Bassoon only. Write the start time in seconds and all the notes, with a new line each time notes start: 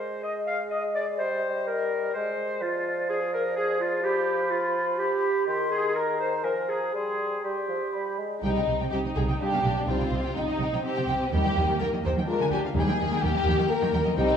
Already playing: G#3
1.19 G3
2.15 G#3
2.61 F3
5.47 D#3
6.44 F3
6.94 G3
7.44 G3
7.68 F3
7.94 G3
8.19 G#3